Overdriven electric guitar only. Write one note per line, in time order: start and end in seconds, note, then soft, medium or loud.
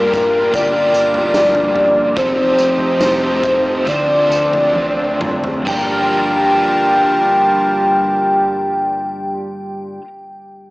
0.00 0.50 A#3 medium
0.00 0.55 F4 medium
0.00 0.54 G4 medium
0.00 0.55 D5 medium
0.51 2.16 A#3 medium
0.51 2.17 F4 medium
0.58 2.18 G4 medium
0.58 2.18 D5 medium
2.16 3.04 F3 medium
2.16 2.99 C4 medium
2.16 3.00 D#4 medium
2.16 3.02 A4 medium
2.16 3.03 C5 medium
2.99 3.84 C4 medium
2.99 3.87 D#4 medium
2.99 3.88 A4 medium
3.04 3.88 C5 medium
3.85 5.65 A3 medium
3.89 5.68 C4 medium
3.89 5.69 F4 medium
3.95 5.71 C5 medium
5.65 10.01 G3 medium
5.65 10.04 D4 medium
5.69 10.05 F4 medium
5.69 10.07 A#4 medium